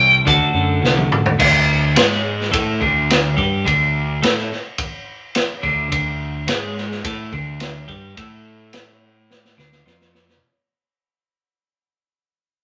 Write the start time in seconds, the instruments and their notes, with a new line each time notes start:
Already playing: fingered electric bass C2, clean electric guitar C3 E3 G3 C4 E4 A4, lead electric guitar G5
0.25 fingered electric bass D2, clean electric guitar D3 A3 D4 F#4 A4, kick, closed hi-hat
0.53 fingered electric bass F#2
0.82 fingered electric bass C2, snare
0.97 high tom
1.12 mid tom
1.26 floor tom
1.39 fingered electric bass D2, clean electric guitar D3, kick, crash
1.96 fingered electric bass G#2, clean electric guitar G#3, snare, ride bell
2.12 snare
2.40 snare
2.52 fingered electric bass A2, clean electric guitar A3, kick, ride bell
2.81 fingered electric bass D2, clean electric guitar D3, kick
3.10 snare, ride bell
3.37 fingered electric bass G2, clean electric guitar G3, kick
3.65 fingered electric bass D2, clean electric guitar D3, kick, ride bell
4.22 fingered electric bass A2, clean electric guitar A3, snare, ride bell
4.38 snare
4.52 snare
4.78 kick, ride bell
5.35 snare, ride bell
5.63 fingered electric bass D2, clean electric guitar D3, kick
5.92 fingered electric bass D2, clean electric guitar D3, kick, ride bell
6.47 fingered electric bass G#2, clean electric guitar G#3, snare, ride bell
6.77 snare
6.91 snare
7.04 fingered electric bass A2, clean electric guitar A3, kick, ride bell
7.32 fingered electric bass D2, clean electric guitar D3, kick
7.60 snare, ride bell
7.88 fingered electric bass G2, clean electric guitar G3, kick
8.17 fingered electric bass A2, clean electric guitar A3, kick, ride bell
8.73 snare, ride bell
9.31 snare
9.45 snare
9.58 fingered electric bass D2, clean electric guitar D3, snare
9.72 snare
9.85 fingered electric bass F2, clean electric guitar F3, snare
10.01 snare
10.15 snare
10.30 snare